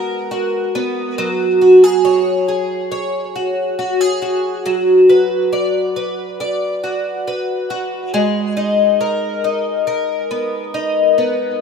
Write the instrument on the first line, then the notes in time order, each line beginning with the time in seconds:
twelve-string acoustic guitar
Already playing: G#3 B3 F#4 A#4
0.31 F#4
0.75 B3
1.18 F#3
1.61 F#4
1.84 G#4
2.05 C#5
2.48 G#4
2.92 C#5
3.35 F#4
3.79 F#4
4.01 G#4
4.22 F#4
4.66 F#3
5.09 B4
5.53 D5
5.96 B4
6.40 D5
6.84 F#4
7.27 B4
7.70 F#4
8.14 G#3
8.57 D#4
9.01 A#4
9.44 D#4
9.87 A#4
10.31 B3
10.74 D#4
11.18 B3